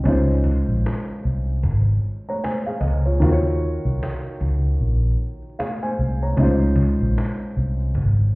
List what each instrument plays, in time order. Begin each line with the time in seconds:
0.04 fingered electric bass C#2, upright piano G#3 C#4 D#4, cajon bass
0.08 upright piano F4 C5
0.26 cajon slap
0.44 cajon bass
0.65 fingered electric bass A#1, cajon slap
0.86 cajon slap
1.09 cajon slap
1.25 fingered electric bass C2, cajon slap
1.50 cajon slap
1.63 fingered electric bass G#1, cajon bass
1.87 cajon slap
2.04 cajon slap
2.26 upright piano C#5 A#5, cajon slap
2.44 upright piano C5 G#5, cajon slap
2.66 upright piano G#4 F5, cajon slap
2.80 fingered electric bass C#2, upright piano D#5, cajon bass
3.06 upright piano F4 C#5, cajon slap
3.19 fingered electric bass D#2, upright piano D#3 A#3 F4, cajon bass
3.24 upright piano F#4 C5
3.32 upright piano C#5
3.42 cajon slap
3.62 cajon slap
3.82 fingered electric bass C2, cajon slap
4.03 cajon slap
4.26 cajon slap
4.41 fingered electric bass C#2, cajon bass
4.66 cajon slap
4.80 fingered electric bass A#1, cajon slap
5.04 cajon slap
5.20 cajon slap
5.42 cajon slap
5.59 upright piano G#4 F5, cajon slap
5.82 upright piano C5 G#5, cajon slap
5.98 fingered electric bass C2, cajon slap
6.22 upright piano C#5 A#5, cajon slap
6.37 fingered electric bass C#2, upright piano G#3 C#4 D#4, cajon bass
6.41 upright piano F4 C5
6.58 cajon slap
6.76 cajon bass
6.97 fingered electric bass A#1, cajon slap
7.18 cajon slap
7.40 cajon slap
7.56 fingered electric bass C2, cajon slap
7.81 cajon slap
7.95 fingered electric bass G#1, cajon bass
8.19 cajon slap